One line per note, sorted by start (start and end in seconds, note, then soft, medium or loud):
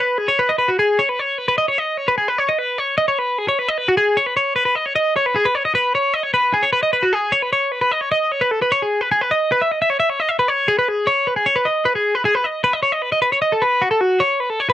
0.00 0.18 B4 medium
0.18 0.29 G#4 medium
0.28 0.39 C#5 medium
0.39 0.49 B4 medium
0.49 0.58 D#5 medium
0.58 0.69 B4 medium
0.68 0.79 F#4 medium
0.79 0.99 G#4 medium
0.99 1.09 C#5 medium
1.09 1.19 B4 medium
1.19 1.38 C#5 medium
1.38 1.47 B4 medium
1.48 1.58 B4 medium
1.58 1.68 D#5 medium
1.68 1.78 C#5 medium
1.78 1.97 D#5 medium
1.97 2.08 C#5 medium
2.08 2.17 B4 medium
2.18 2.28 G#4 medium
2.28 2.38 B4 medium
2.38 2.48 C#5 medium
2.49 2.59 D#5 medium
2.59 2.78 B4 medium
2.78 2.97 C#5 medium
2.98 3.08 D#5 medium
3.08 3.19 C#5 medium
3.19 3.38 B4 medium
3.38 3.48 G#4 medium
3.48 3.59 C#5 medium
3.59 3.69 B4 medium
3.69 3.78 D#5 medium
3.78 3.87 B4 medium
3.88 3.97 F#4 medium
3.97 4.17 G#4 medium
4.17 4.26 C#5 medium
4.26 4.36 B4 medium
4.37 4.55 C#5 medium
4.56 4.64 B4 medium
4.65 4.75 B4 medium
4.75 4.86 D#5 medium
4.86 4.95 C#5 medium
4.96 5.15 D#5 medium
5.16 5.26 C#5 medium
5.26 5.36 B4 medium
5.36 5.45 G#4 medium
5.45 5.55 B4 medium
5.55 5.65 C#5 medium
5.65 5.75 D#5 medium
5.75 5.95 B4 medium
5.95 6.14 C#5 medium
6.14 6.23 D#5 medium
6.23 6.33 C#5 medium
6.34 6.54 B4 medium
6.54 6.64 G#4 medium
6.63 6.72 C#5 medium
6.73 6.82 B4 medium
6.83 6.93 D#5 medium
6.93 7.03 B4 medium
7.03 7.13 F#4 medium
7.13 7.33 G#4 medium
7.32 7.42 C#5 medium
7.42 7.52 B4 medium
7.53 7.72 C#5 medium
7.72 7.80 B4 medium
7.81 7.92 B4 medium
7.92 8.01 D#5 medium
8.01 8.11 C#5 medium
8.12 8.32 D#5 medium
8.32 8.42 C#5 medium
8.41 8.51 B4 medium
8.51 8.61 A4 medium
8.62 8.71 B4 medium
8.72 8.81 C#5 medium
8.82 9.01 G#4 medium
9.01 9.11 B4 medium
9.12 9.21 G#4 medium
9.21 9.31 B4 medium
9.31 9.50 D#5 medium
9.52 9.61 B4 loud
9.62 9.71 E5 medium
9.71 9.80 D#5 medium
9.82 9.90 E5 medium
9.90 9.99 C#5 medium
10.00 10.10 E5 medium
10.10 10.20 C#5 medium
10.20 10.29 D#5 medium
10.29 10.38 E5 loud
10.39 10.48 B4 medium
10.48 10.68 C#5 medium
10.68 10.78 G#4 medium
10.79 10.89 B4 medium
10.89 11.08 G#4 medium
11.07 11.27 C#5 loud
11.27 11.36 B4 medium
11.36 11.46 G#4 medium
11.46 11.56 C#5 medium
11.56 11.66 B4 medium
11.65 11.85 D#5 medium
11.85 11.95 B4 loud
11.95 12.15 G#4 medium
12.15 12.25 B4 medium
12.25 12.35 G#4 medium
12.35 12.45 B4 medium
12.44 12.63 D#5 medium
12.64 12.73 B4 medium
12.73 12.82 D#5 medium
12.83 12.92 C#5 medium
12.92 13.02 D#5 medium
13.02 13.12 B4 medium
13.12 13.21 D#5 medium
13.22 13.32 B4 medium
13.32 13.41 C#5 medium
13.42 13.52 D#5 loud
13.52 13.62 A4 medium
13.62 13.82 B4 medium
13.82 13.91 F#4 medium
13.91 14.01 A4 medium
14.01 14.21 F#4 medium
14.20 14.40 C#5 loud
14.40 14.50 B4 medium
14.50 14.60 A4 medium
14.60 14.69 C#5 medium
14.70 14.73 B4 medium